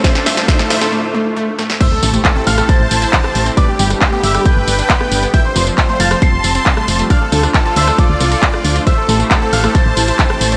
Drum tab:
CC |----------------|x---------------|----------------|----------------|
HH |xxoxxxox--------|x-oxx-oxx-oxx-ox|x-oxx-oxx-oxx-ox|x-oxx-oxx-oxx-ox|
TB |x-xx--xx--------|x-xx--xxx-xxx-xx|x-xxx-xxx-xxx-xx|x-xxx-xxx-xxx-xx|
CP |----------------|----x-------x---|----x-------x---|----x-------x---|
SD |oooooooo------oo|-------r-----r--|---r---r-----r--|-------r-----r--|
BD |o---o-----------|o---o---o---o---|o---o---o---o---|o---o---o---o---|

CC |----------------|----------------|
HH |x-oxx-oxx-oxx-ox|x-oxx-oxx-oxx-ox|
TB |x-xxx-xxx-xx--xx|x-xxx-xxx-xxx-xx|
CP |----x-------x---|----x-------x---|
SD |---r---r-----r--|-------r-----r--|
BD |o---o---o---o---|o---o---o---o---|